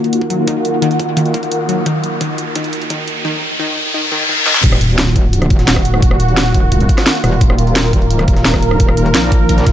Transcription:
Already playing: D#3 A#3 F4 F#4, riser
0.04 closed hi-hat
0.13 closed hi-hat
0.21 kick
0.30 F#3, closed hi-hat
0.47 D#3, kick, closed hi-hat
0.65 closed hi-hat
0.82 D#3, closed hi-hat
0.91 closed hi-hat
0.99 kick, closed hi-hat
1.17 D#3, kick, closed hi-hat
1.26 closed hi-hat
1.34 A#3, kick, closed hi-hat
1.43 closed hi-hat
1.52 closed hi-hat
1.69 F#3, closed hi-hat
1.86 D#3, kick, closed hi-hat
2.04 closed hi-hat
2.21 D#3, kick, closed hi-hat
2.38 closed hi-hat
2.56 D#3, kick, closed hi-hat
2.64 closed hi-hat
2.73 closed hi-hat
2.82 closed hi-hat
2.90 D#3, kick, closed hi-hat
3.08 closed hi-hat
3.25 D#3
3.60 D#3
3.94 D#3, reverse cymbal
4.12 D#3
4.29 D#3
4.46 D#3, snare
4.55 snare
4.64 D#1 D#3 A#3 F4 F#4, kick, closed hi-hat, crash, sub drop
4.72 cross-stick
4.81 closed hi-hat
4.90 closed hi-hat
4.98 snare, closed hi-hat
5.07 snare
5.16 kick, closed hi-hat
5.33 closed hi-hat
5.42 cross-stick, closed hi-hat
5.50 D#1, kick, closed hi-hat
5.59 snare, closed hi-hat
5.68 D#1, snare, closed hi-hat
5.76 kick, cross-stick, snare
5.85 closed hi-hat
5.94 cross-stick
6.02 D#1, kick, closed hi-hat
6.11 cross-stick
6.20 closed hi-hat
6.28 closed hi-hat
6.37 snare, closed hi-hat
6.46 closed hi-hat
6.54 kick, closed hi-hat
6.72 kick, closed hi-hat
6.80 closed hi-hat
6.89 kick, closed hi-hat
6.98 cross-stick, snare, closed hi-hat
7.06 snare, closed hi-hat
7.15 closed hi-hat
7.24 D#1, cross-stick, closed hi-hat, open hi-hat
7.41 D#1 A#4, kick, closed hi-hat
7.50 cross-stick
7.58 closed hi-hat
7.67 closed hi-hat
7.76 snare, closed hi-hat
7.84 snare
7.93 kick, closed hi-hat
8.01 D1, closed hi-hat
8.10 closed hi-hat
8.19 cross-stick, closed hi-hat
8.28 D#1, kick, closed hi-hat
8.36 snare, closed hi-hat
8.45 D#1, snare, closed hi-hat
8.54 kick, cross-stick, snare
8.62 closed hi-hat
8.71 cross-stick
8.80 D#1, kick, closed hi-hat
8.89 cross-stick
8.97 D#1, closed hi-hat
9.06 closed hi-hat
9.14 A#1, snare, closed hi-hat
9.23 closed hi-hat
9.32 kick, closed hi-hat
9.49 kick, closed hi-hat
9.58 snare, closed hi-hat
9.66 D#1, kick, snare, closed hi-hat

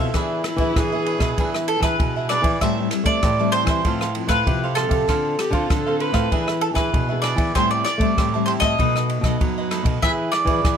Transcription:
Already playing: A2 E5 F5
0.00 A4 C5
0.14 E3 B3 D4 G#4 B4 E5, kick, cross-stick, ride
0.44 E4, muted cavaquinho stroke, cross-stick, ride
0.56 E3 B3 D4 E5, kick, ride
0.61 G#4 B4
0.76 B2 E3 D4 G#4 B4 E5, kick, cross-stick, ride
0.92 B3 D4 G#4 B4 E5
1.06 D4 G#4 B4 E5, ride
1.18 B2 B4 E5, kick, cross-stick, ride
1.23 G#4
1.38 E3 B3 D4 G#4 B4 E5, kick, ride
1.54 G#4 B4 E5, cross-stick
1.68 A4, muted cavaquinho stroke, ride
1.80 E3 B3 B4 E5, kick, cross-stick, ride
1.84 D4 G#4 B4
2.00 B2, kick, ride
2.16 G#4 B4 E5
2.29 B3 D4 G#4 B4 D5 E5, cross-stick, ride
2.42 E3 E5, kick, ride
2.46 G#4 B4
2.61 A2 G3 C4 E4 G4 C5 E5 A5, kick, cross-stick, ride
2.79 G3 C4 E4
2.91 G3 C4 E4, muted cavaquinho stroke, cross-stick, ride
3.03 A3 D5 E5 A5, kick, ride
3.08 C5
3.23 A2 E3 G4 C5 E5 A5, kick, cross-stick, ride
3.39 G3 C4 E4 C5 E5 A5
3.52 G4 C5 E5 A5, ride
3.65 E3 A5, kick, cross-stick, ride
3.70 C5 E5
3.84 A2 F3 C4 F4 A4 C5 F5, kick, ride
4.01 A4 C5 F5, cross-stick
4.15 F3 C4 F4, muted cavaquinho stroke, ride
4.27 A2 B4 F5, kick, cross-stick, ride
4.31 A4 C5
4.47 A2 C3 F3 C4 F4, kick, ride
4.64 A4 C5 F5
4.75 F3 C4 F4 A4 C5 F5, cross-stick, ride
4.89 C3 C5 F5, kick, ride
4.93 A4
5.08 D3 C4 D4 F4 A4 C5 F5, kick, cross-stick, ride
5.39 G4, muted cavaquinho stroke, cross-stick, ride
5.50 D3 C4 C5 F5, kick, ride
5.54 F4 A4
5.70 A2 D3 D4 A4 C5 F5, kick, cross-stick, ride
5.86 C4 F4 A4 C5 F5
6.00 D4 A4 B4 C5 F5, ride
6.12 A2 A4 C5 F5, kick, cross-stick, ride
6.31 E3 B3 D4 G#4 B4 E5, kick, ride
6.47 G#4 B4 E5, cross-stick
6.61 A4, muted cavaquinho stroke, ride
6.74 E3 G#4 B4 E5, kick, cross-stick, ride
6.78 B3 D4 G#4
6.94 B2, kick, ride
7.09 B3 D4 G#4 B4 E5
7.22 D4 G#4 B4 D5 E5, cross-stick, ride
7.36 E3 G#4 E5, kick, ride
7.55 A2 G3 C4 E4 G4 C5 E5 A5, kick, cross-stick, ride
7.71 D5
7.84 D5, cross-stick, ride
7.98 G3 A3 C4 E4 E5 A5, kick, ride
8.02 C5
8.18 A2 E3 G4 C5 E5 A5, kick, cross-stick, ride
8.34 G3 C4 E4 C5 E5 A5
8.46 G4 C5 E5 A5, ride
8.60 A2 D#5 A5, kick, cross-stick, ride
8.64 C5 E5
8.79 B2 F#3 A3 D#4 A4 B4 D#5, kick, ride
8.96 A4 B4 D#5, cross-stick
9.10 muted cavaquinho stroke, ride
9.21 B2 F#3 A3 D#4 D#5, kick, cross-stick, ride
9.26 A4 B4
9.41 F#2 F#3, kick, ride
9.58 A4 B4 D#5
9.71 F#3 A3 D#4 A4 B4 D#5, cross-stick, ride
9.83 B2 B4 D#5, kick, ride
9.88 A4
10.02 E3 B3 E4 G#4 B4 E5, kick, cross-stick, ride
10.32 D5, muted cavaquinho stroke, cross-stick, ride
10.45 E3 B4 E5, kick, ride
10.49 B3 E4 G#4
10.64 B2 E3 E4 G#4 B4 E5, kick, cross-stick, ride

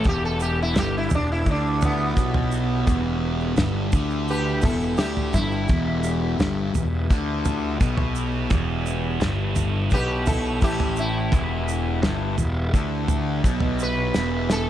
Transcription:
Already playing: E4 G4 B4 E5
0.04 E1 E2, kick, floor tom, shaker
0.09 G4
0.25 A4
0.40 G4, shaker
0.62 E4
0.75 G1 G2 G4, snare, floor tom, shaker
0.98 E4
1.10 E1 E2, floor tom, shaker
1.15 D4
1.32 E4
1.46 D2 D3, kick, shaker
1.51 D4
1.81 B3, floor tom, shaker
2.16 B1 B2, kick, shaker
2.34 floor tom
2.52 shaker
2.86 E1 E2, kick, floor tom, shaker
3.40 shaker
3.57 G1 G2, snare, floor tom, shaker
3.92 D2 D3, kick, floor tom, shaker
4.10 shaker
4.28 G4 B4, shaker
4.62 E1 E2 E4 A4, kick, floor tom, mid tom, shaker
4.80 shaker
4.97 D2 D3 E4 G4, snare, shaker
5.17 floor tom
5.33 G1 G2 E4, kick, mid tom, shaker
5.51 shaker
5.68 E1 E2, kick, floor tom, shaker
6.03 shaker
6.38 G1 G2, snare, floor tom, shaker
6.74 E1 E2, floor tom, shaker
7.09 D2 D3, kick, shaker
7.45 floor tom, shaker
7.80 B1 B2, kick, shaker
7.97 floor tom
8.15 shaker
8.50 E1 E2, kick, floor tom, shaker
8.86 shaker
9.21 G1 G2, snare, floor tom, shaker
9.56 floor tom, shaker
9.90 B1 B2 G4, kick, shaker
9.94 B4
10.26 E4 A4, floor tom, shaker
10.61 A1 A2 E4 G4, kick, shaker
10.80 floor tom
10.96 E4, shaker
11.32 E1 E2, kick, floor tom, shaker
11.68 shaker
12.02 G1 G2, snare, floor tom, shaker
12.38 E1 E2, floor tom, shaker
12.73 D2 D3, kick, shaker
13.08 floor tom, shaker
13.44 B1 B2, kick, shaker
13.60 floor tom
13.79 B4, shaker
14.14 E1 E2, snare, shaker
14.50 A4, snare, shaker

